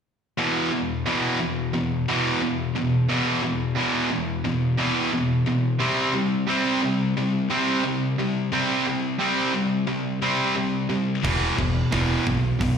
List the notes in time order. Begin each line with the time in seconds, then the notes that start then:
0.38 E2 B2 E3
0.72 E2 B2
1.06 E2 B2 E3
1.40 E2 B2
1.74 E2 B2
2.08 E2 B2 E3
2.42 E2 B2
2.76 E2 B2
3.09 E2 B2 E3
3.43 E2 B2
3.78 E2 B2 E3
4.12 E2 B2
4.45 E2 B2
4.78 E2 B2 E3
5.13 E2 B2
5.46 E2 B2
5.80 C3 G3 C4
6.14 C3 G3
6.49 C3 G3 C4
6.82 C3 G3
7.17 C3 G3
7.50 C3 G3 C4
7.84 C3 G3
8.19 C3 G3
8.52 C3 G3 C4
8.87 C3 G3
9.20 C3 G3 C4
9.55 C3 G3
9.87 C3 G3
10.22 C3 G3 C4
10.55 C3 G3
10.89 C3 G3
11.24 E1 E2 B2 E3, kick, crash
11.58 E1 E2 B2, kick
11.92 E1 E2 B2 E3, kick, snare, open hi-hat
12.27 B1 E2 B2, kick
12.61 B1 E2 B2, kick, open hi-hat